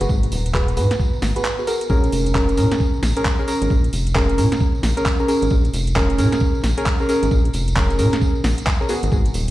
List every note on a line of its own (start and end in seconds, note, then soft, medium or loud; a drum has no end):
0.00 0.07 F#1 medium
0.00 1.91 B3 medium
0.00 0.09 F#4 medium
0.00 0.09 G#4 medium
0.00 0.09 B4 medium
0.00 1.91 A#5 medium
0.00 closed hi-hat medium
0.00 tambourine soft
0.09 0.28 G#1 loud
0.09 kick loud
0.09 tambourine medium
0.23 closed hi-hat soft
0.23 tambourine soft
0.32 0.78 D#1 medium
0.32 open hi-hat loud
0.32 tambourine medium
0.45 closed hi-hat medium
0.45 tambourine soft
0.54 0.75 F#4 loud
0.54 0.75 G#4 medium
0.54 0.75 B4 loud
0.54 kick loud
0.54 clap loud
0.54 tambourine medium
0.68 closed hi-hat soft
0.68 tambourine soft
0.77 0.87 G#2 medium
0.77 1.20 F#4 medium
0.77 1.20 G#4 medium
0.77 1.20 B4 medium
0.77 open hi-hat loud
0.77 tambourine medium
0.91 snare medium
0.91 closed hi-hat medium
0.91 tambourine soft
1.00 kick loud
1.00 tambourine soft
1.13 tambourine soft
1.22 1.33 G#1 medium
1.22 snare medium
1.22 open hi-hat loud
1.22 tambourine medium
1.36 1.44 F#4 medium
1.36 1.44 G#4 medium
1.36 1.44 B4 medium
1.36 closed hi-hat medium
1.36 tambourine soft
1.44 clap loud
1.44 closed hi-hat medium
1.44 tambourine soft
1.59 1.66 F#4 medium
1.59 1.66 G#4 medium
1.59 1.66 B4 medium
1.59 tambourine soft
1.67 1.85 F#4 medium
1.67 1.85 G#4 medium
1.67 1.85 A#4 loud
1.67 open hi-hat loud
1.67 tambourine medium
1.81 closed hi-hat medium
1.81 tambourine soft
1.90 2.08 A#1 loud
1.90 2.32 C#4 loud
1.90 2.31 G#4 medium
1.90 2.32 A#4 loud
1.90 kick loud
1.90 tambourine medium
2.04 closed hi-hat soft
2.04 tambourine soft
2.12 2.59 F1 medium
2.12 open hi-hat loud
2.12 tambourine medium
2.26 closed hi-hat medium
2.26 tambourine soft
2.35 2.56 C#4 medium
2.35 2.56 G#4 medium
2.35 2.56 A#4 loud
2.35 kick loud
2.35 clap loud
2.35 tambourine medium
2.48 closed hi-hat soft
2.48 tambourine soft
2.57 2.68 A#2 medium
2.57 3.01 C#4 medium
2.57 3.01 G#4 medium
2.57 3.01 A#4 medium
2.57 open hi-hat loud
2.57 tambourine loud
2.72 snare medium
2.72 closed hi-hat medium
2.72 tambourine soft
2.80 kick loud
2.80 tambourine soft
2.93 tambourine soft
3.03 3.13 A#1 medium
3.03 snare medium
3.03 open hi-hat loud
3.03 tambourine medium
3.17 3.24 C#4 medium
3.17 3.24 G#4 medium
3.17 3.24 A#4 medium
3.17 closed hi-hat medium
3.17 tambourine soft
3.25 kick loud
3.25 clap loud
3.25 closed hi-hat medium
3.25 tambourine medium
3.39 3.46 C#4 medium
3.39 3.46 G#4 medium
3.39 3.46 A#4 medium
3.39 tambourine soft
3.48 3.66 C#4 medium
3.48 3.66 G#4 medium
3.48 3.66 A#4 loud
3.48 open hi-hat loud
3.48 tambourine medium
3.62 3.68 G#1 medium
3.62 closed hi-hat medium
3.62 tambourine soft
3.70 3.88 A#1 loud
3.70 kick loud
3.70 tambourine medium
3.84 closed hi-hat soft
3.84 tambourine soft
3.93 4.39 F1 medium
3.93 open hi-hat loud
3.93 tambourine loud
4.07 closed hi-hat medium
4.07 tambourine soft
4.15 4.36 C#4 medium
4.15 4.36 G#4 medium
4.15 4.36 A#4 loud
4.15 kick loud
4.15 clap loud
4.15 tambourine soft
4.29 closed hi-hat soft
4.29 tambourine soft
4.38 4.48 A#2 medium
4.38 4.81 C#4 medium
4.38 4.81 G#4 medium
4.38 4.81 A#4 medium
4.38 open hi-hat loud
4.38 tambourine medium
4.52 snare medium
4.52 closed hi-hat medium
4.52 tambourine soft
4.61 kick loud
4.61 tambourine medium
4.75 tambourine soft
4.83 4.93 A#1 medium
4.83 snare medium
4.83 open hi-hat loud
4.83 tambourine loud
4.97 5.05 C#4 medium
4.97 5.05 G#4 medium
4.97 5.05 A#4 medium
4.97 closed hi-hat medium
4.97 tambourine soft
5.06 kick loud
5.06 clap loud
5.06 closed hi-hat soft
5.06 tambourine medium
5.20 5.27 C#4 medium
5.20 5.27 G#4 medium
5.20 5.27 A#4 medium
5.20 tambourine soft
5.28 5.46 C#4 medium
5.28 5.46 G#4 medium
5.28 5.46 A#4 loud
5.28 open hi-hat loud
5.28 tambourine medium
5.42 5.49 G#1 medium
5.42 closed hi-hat medium
5.42 tambourine soft
5.50 5.69 A#1 loud
5.50 kick loud
5.50 tambourine medium
5.65 closed hi-hat soft
5.65 tambourine soft
5.73 6.20 F1 medium
5.73 open hi-hat loud
5.73 tambourine loud
5.87 closed hi-hat medium
5.87 tambourine soft
5.96 6.16 C#4 medium
5.96 6.16 G#4 medium
5.96 6.16 A#4 loud
5.96 kick loud
5.96 clap loud
6.10 closed hi-hat soft
6.10 tambourine soft
6.18 6.29 A#2 medium
6.18 6.61 C#4 medium
6.18 6.61 G#4 medium
6.18 6.61 A#4 medium
6.18 open hi-hat loud
6.18 tambourine loud
6.32 snare medium
6.32 closed hi-hat medium
6.32 tambourine soft
6.40 kick loud
6.40 tambourine medium
6.55 tambourine soft
6.64 6.74 A#1 medium
6.64 snare medium
6.64 open hi-hat loud
6.64 tambourine medium
6.77 6.85 C#4 medium
6.77 6.85 G#4 medium
6.77 6.85 A#4 medium
6.77 closed hi-hat medium
6.77 tambourine soft
6.86 kick loud
6.86 clap loud
6.86 closed hi-hat medium
6.86 tambourine medium
6.99 7.07 C#4 medium
6.99 7.07 G#4 medium
6.99 7.07 A#4 medium
6.99 tambourine soft
7.09 7.27 C#4 medium
7.09 7.27 G#4 medium
7.09 7.27 A#4 loud
7.09 open hi-hat loud
7.09 tambourine medium
7.23 7.29 G#1 medium
7.23 closed hi-hat medium
7.23 tambourine soft
7.31 7.49 A#1 loud
7.31 kick loud
7.31 tambourine medium
7.45 closed hi-hat soft
7.45 tambourine soft
7.53 8.00 F1 medium
7.53 open hi-hat loud
7.53 tambourine medium
7.68 closed hi-hat medium
7.68 tambourine soft
7.76 7.97 C#4 medium
7.76 7.97 G#4 medium
7.76 7.97 A#4 loud
7.76 kick loud
7.76 clap loud
7.76 tambourine medium
7.90 closed hi-hat soft
7.90 tambourine soft
7.99 8.09 A#2 medium
7.99 8.42 C#4 medium
7.99 8.42 G#4 medium
7.99 8.42 A#4 medium
7.99 open hi-hat loud
7.99 tambourine medium
8.13 snare medium
8.13 closed hi-hat medium
8.13 tambourine soft
8.21 kick loud
8.21 tambourine medium
8.35 tambourine soft
8.44 8.54 A#1 medium
8.44 snare medium
8.44 open hi-hat loud
8.44 tambourine medium
8.58 closed hi-hat medium
8.58 tambourine soft
8.67 kick loud
8.67 clap loud
8.67 closed hi-hat medium
8.67 tambourine medium
8.81 8.88 C#4 medium
8.81 8.88 G#4 medium
8.81 8.88 A#4 medium
8.81 tambourine soft
8.89 9.02 B3 medium
8.89 9.02 F#4 medium
8.89 9.02 G#4 loud
8.89 open hi-hat loud
8.89 tambourine medium
9.03 9.10 G#1 loud
9.03 closed hi-hat medium
9.03 tambourine soft
9.12 9.30 G#1 loud
9.12 kick loud
9.12 tambourine medium
9.25 closed hi-hat soft
9.25 tambourine soft
9.34 9.51 D#1 medium
9.34 open hi-hat loud
9.34 tambourine loud